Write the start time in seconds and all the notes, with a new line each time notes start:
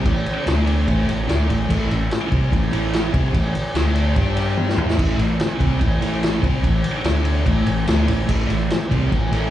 0.05 A1 A2 E3, kick, ride
0.26 ride
0.46 D2 D3 A3 D4, snare, ride
0.67 ride
0.87 A1 A2 E3 A3, kick, ride
1.07 A1 A2 E3, ride
1.28 D2 D3 A3 D4, snare, ride
1.49 A1 A2 E3, ride
1.69 A1 A2 E3 A3, kick, crash
1.90 A1 A2 E3, ride
2.11 snare, ride
2.31 C2 C3 G3 C4, kick, ride
2.52 A1 A2 E3, kick, ride
2.71 A1 A2 E3 A3, ride
2.93 snare, ride
3.13 C2 C3 G3 C4, kick, ride
3.34 A1 A2 E3, kick, ride
3.55 ride
3.74 D2 D3 A3 D4, snare, ride
3.95 ride
4.16 G2 G3 D4 G4, kick, ride
4.37 ride
4.57 high tom
4.69 snare
4.77 E2 E3 B3 E4, mid tom
4.90 snare
4.97 A1 A2 E3 A3, kick, crash
5.18 A1 A2 E3, ride
5.40 snare, ride
5.59 C2 C3 G3 C4, kick, ride
5.80 A1 A2 E3, kick, ride
6.01 A1 A2 E3 A3, ride
6.23 snare, ride
6.42 C2 C3 G3 C4, kick, ride
6.63 A1 A2 E3, kick, ride
6.84 ride
7.04 D2 D3 A3 D4, snare, ride
7.25 ride
7.45 A1 A2 E3 A3, kick, ride
7.66 A1 A2 E3, ride
7.86 D2 D3 A3 D4, snare, ride
8.08 A1 A2 E3, ride
8.28 A1 A2 E3 A3, kick, crash
8.49 A1 A2 E3, ride
8.70 snare, ride
8.90 C2 C3 G3 C4, kick, ride
9.10 A1 A2 E3, kick, ride
9.31 A1 A2 E3 A3, ride